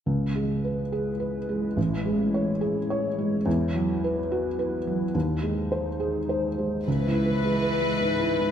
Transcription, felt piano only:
X:1
M:3/4
L:1/8
Q:1/4=105
K:C#m
V:1 name="Felt piano" clef=bass
C,, G, B G B G, | A,,, G, c G c G, | E,, F, B F B F, | D,, G, ^B G B G, |
(3C,, E B (3G, B G, (3G,, E G,, |]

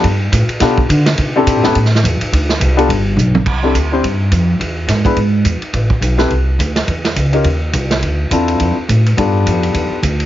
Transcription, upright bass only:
X:1
M:4/4
L:1/8
Q:"Swing" 1/4=210
K:C
V:1 name="Upright bass" clef=bass
G,,2 A,, z B,,2 D,2 | C,2 (3B,, A,, G,, A,,2 E,, z | D,,2 C,,2 G,,,2 B,,,2 | C,,2 D,,2 G,,2 F,,2 |
E,,2 ^G,,2 G,,2 E,, z | A,,,2 B,,,2 C,,2 D,,2 | E,,2 _D,,2 _E,,2 C,,2 | D,,2 E,,2 F,, z A,,2 |
G,,2 F,,2 E,, z D,,2 |]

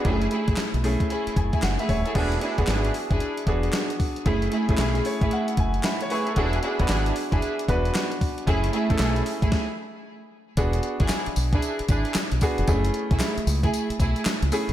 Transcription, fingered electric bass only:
X:1
M:4/4
L:1/16
Q:"Swing 16ths" 1/4=114
K:Emix
V:1 name="Fingered electric bass" clef=bass
F,,,2 z A,,, z B,,,2 z3 F,,, z F,,, z ^D,,, z | E,,,2 z F,,, G,,,2 z F,,, z2 E,,,2 z4 | F,,,2 z A,,, B,,,2 z A,,, z2 F,,,2 z4 | E,,,2 z F,,, G,,,2 z F,,, z2 E,,,2 z4 |
F,,,2 z A,,, B,,,2 z A,,, z8 | E,,,2 z G,,, z2 B,,,2 z2 G,,, z2 B,,, z ^E,,, | F,,,2 z B,,, z2 C,,2 z2 B,,, z2 C,, z ^D,,, |]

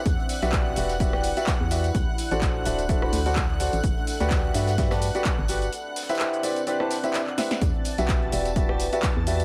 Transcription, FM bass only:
X:1
M:4/4
L:1/16
Q:"Swing 16ths" 1/4=127
K:Em
V:1 name="FM bass" clef=bass
E,, z2 B,,,3 E,,,4- E,,, z2 E,,3 | D,, z2 A,,,3 D,,,4 D,,4- D,, A,,, | G,,, z2 D,,3 G,,4- G,, z2 G,,,3 | z16 |
E,, z2 B,,,3 E,,,4- E,,, z2 E,,3 |]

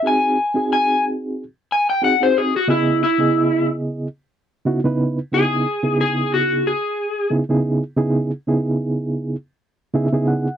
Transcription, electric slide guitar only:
X:1
M:4/4
L:1/16
Q:"Swing 16ths" 1/4=91
K:C#m
V:1 name="Electric slide guitar"
g4 g2 z4 g =g f ^B ^G F | E2 E4 z8 z2 | G4 G2 F2 G4 z4 | z16 |]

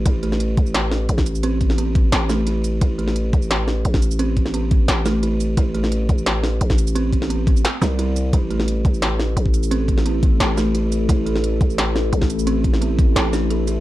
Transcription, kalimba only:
X:1
M:4/4
L:1/8
Q:1/4=174
K:Am
V:1 name="Kalimba"
E A,4 z3 | C2 B,3 A, E z | E A,4 z3 | C2 B,3 A, E z |
E A,4 z3 | C2 B,3 G, E z | E A,4 z3 | C2 B,2 A A, E z |
E A,4 z3 | C2 B,2 A D A E |]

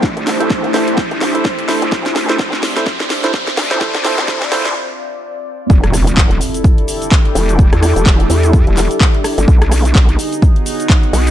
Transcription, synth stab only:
X:1
M:4/4
L:1/16
Q:"Swing 16ths" 1/4=127
K:Ephr
V:1 name="Synth stab"
z3 [EAc] z2 [EAc] z4 [EAc] z2 [EAc] z | z3 [EAc] z3 [EAc] z3 [EAc] z3 [EAc] | [EAc] z [EAc] z [EAc] z [EAc] z8 z | z16 |
z16 | z16 |]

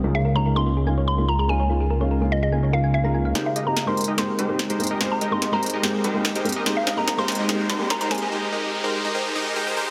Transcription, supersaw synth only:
X:1
M:4/4
L:1/16
Q:1/4=145
K:Ab
V:1 name="Supersaw synth"
z16 | z16 | [A,EGBc]2 [A,EGBe]3 [A,EGBc]2 [A,EGBe] [A,EGBc]2 [A,EGBc]3 [A,EGBc]2 [A,EGBe] | [A,EGBc]2 [A,EGBe]3 [A,EGBc]2 [A,EGBe] [A,EGBc]2 [A,EGBc]3 [A,EGBc]2 [A,EGBe] |
[A,EGBc]2 [A,EGBe]3 [A,EGBc]2 [A,EGBe] [A,EGBc]2 [A,EGBc]3 [A,EGBc]2 [A,EGBe] | [A,EGBc]2 [A,EGBe]3 [A,EGBc]2 [A,EGBe] [A,EGBc]2 [A,EGBe]2 [A,EGBc] [A,EGBc] [A,EGBc]2 |]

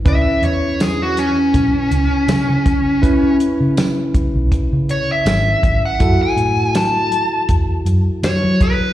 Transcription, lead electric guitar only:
X:1
M:4/4
L:1/16
Q:"Swing 16ths" 1/4=81
K:C#m
V:1 name="Lead electric guitar"
e2 c2 G F C8- C2- | C2 z8 c e4 f- | f g3 a4 z4 c2 B2 |]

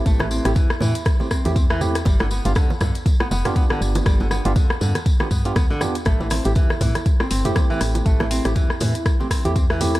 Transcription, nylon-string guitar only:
X:1
M:4/4
L:1/16
Q:"Swing 16ths" 1/4=120
K:Am
V:1 name="Nylon-string guitar"
A, E, C G E, z E, z2 C C G C E, z2 | G, D, B, F D, z D, z2 B, B, F B, D, z2 | G, D, B, F D, z D, z2 B, B, F B, D, z2 | A, E, C G E, z E, z2 C C G C E, z2 |
A, E, C G E, z E, z2 C C G C E, z2 |]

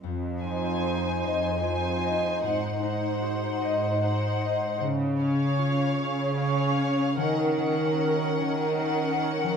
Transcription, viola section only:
X:1
M:6/8
L:1/8
Q:3/8=50
K:Fphr
V:1 name="Viola section"
z [Ec]3 [Ec]2 | [Ec] [Ec]3 [Ec]2 | z [Dd]3 [Dd]2 | [DB] [DB]3 [DB]2 |]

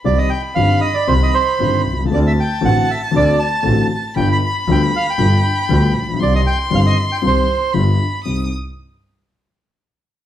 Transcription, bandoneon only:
X:1
M:4/4
L:1/16
Q:1/4=117
K:Cm
V:1 name="Bandoneon"
d e g2 f2 e d c e c4 z2 | d =e g2 ^f2 e2 d2 =a4 z2 | g =b b2 g2 f g6- g z2 | d e g2 f e2 g c4 z4 |
z16 |]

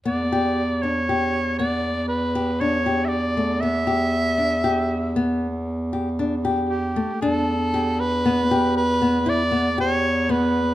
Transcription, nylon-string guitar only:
X:1
M:7/4
L:1/8
Q:1/4=117
K:Edor
V:1 name="Nylon-string guitar"
B, G2 D G2 B,2 z G D G2 A, | B, G2 D G2 B,2 z G D G2 A, | D2 G2 B, G2 B, E B, G2 B,2 |]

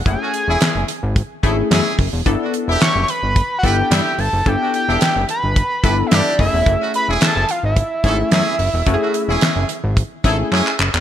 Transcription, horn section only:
X:1
M:4/4
L:1/16
Q:1/4=109
K:F#dor
V:1 name="Horn section"
z [A,CF] z [CEG]3 z4 [CEA] z [CEG]2 z2 | z [B,=DF] z [DE=G]3 z4 [EGB] z [DEG]2 z2 | z [B,=DF] z [DE=G]3 z4 [EGB] z [DEG]2 z2 | z [A,CF] z [CEG]3 z4 [CEA] z [CEG]2 z2 |
z [A,CF] z [CEG]3 z4 [CEA] z [CEG]2 z2 |]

